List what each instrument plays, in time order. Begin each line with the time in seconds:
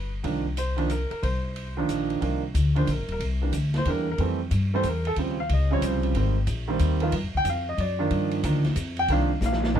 Already playing: upright bass G1, upright piano B4
0.23 upright bass C2, upright piano D#3 F3 A#3 D4, kick, ride
0.57 upright piano C5, hi-hat pedal, ride
0.77 upright piano D#3 F3 A#3 D4, ride
0.90 upright piano A#4, hi-hat pedal, ride
1.11 upright piano A#4, muted upright bass stroke, ride
1.23 upright bass C2, upright piano C5, kick, ride
1.56 ride
1.77 upright piano D#3 F3 A#3 D4
1.88 upright bass A#1, hi-hat pedal, ride
2.10 ride
2.21 upright bass C2, upright piano D#3 F3 A#3 D4, kick, ride
2.54 upright bass D2, kick, hi-hat pedal, ride
2.75 upright piano D#3 F3 A#3 D4 C5, ride
2.87 upright bass A#1, kick, hi-hat pedal, ride
2.91 upright piano A#4
2.98 upright bass G1
3.08 upright bass D#1, ride
3.12 upright piano A#4
3.20 upright bass C2, kick, ride
3.42 upright piano E3 G3 A#3 D4
3.52 upright bass D2, kick, hi-hat pedal, ride
3.74 upright piano C5, snare, ride
3.85 upright bass E2, upright piano E3 G3 A#3 D4, kick, ride
3.90 upright piano A#4
4.12 upright piano A#4
4.18 upright bass F2, upright piano E3 G3 A3 C4, kick, ride
4.51 upright bass G2, kick, hi-hat pedal, ride
4.74 upright piano E3 G3 A3 C4 C5
4.83 upright bass E2, kick, hi-hat pedal, ride
4.89 upright piano A#4
5.05 upright piano A4, ride
5.16 upright bass D#2, upright piano C#3 F3 G3 C4, kick, ride
5.40 upright piano F5
5.49 upright bass C#2, kick, ride
5.53 upright piano D#5
5.71 upright piano C#3 F3 G3 C4 C#5
5.82 upright bass C2, kick, hi-hat pedal, ride
5.86 upright piano C5
6.03 ride
6.14 upright bass G#1, upright piano D#3 G3 A#3 C4, kick, ride
6.47 upright bass A#1, kick, hi-hat pedal, ride
6.68 upright piano D#3 G3 A#3 C4
6.79 upright bass D#2, kick, hi-hat pedal, ride
7.00 upright piano D#3 F3 B3 F4, ride
7.12 upright bass G2, kick, ride
7.23 upright bass F2
7.34 upright bass D2, upright piano G5
7.44 upright bass F2, kick, hi-hat pedal, ride
7.49 upright piano F5
7.69 upright piano D#5
7.78 upright bass F#2, upright piano D5, kick, ride
7.99 upright piano D#3 F3 A#3 D4
8.11 upright bass G2, kick, ride
8.31 ride
8.43 upright bass D2, upright piano D#3 F3 A#3 D4, kick, hi-hat pedal, ride
8.64 snare, ride
8.76 upright bass F2, kick, hi-hat pedal, ride
8.97 upright piano G5, ride
9.08 upright bass C2, upright piano D#3 F3 A#3 D4 F5, kick, ride
9.41 upright bass A#1, snare, hi-hat pedal
9.46 upright piano F5
9.53 snare
9.63 snare
9.74 upright bass D2, upright piano F3 A#3 D4 D#4, floor tom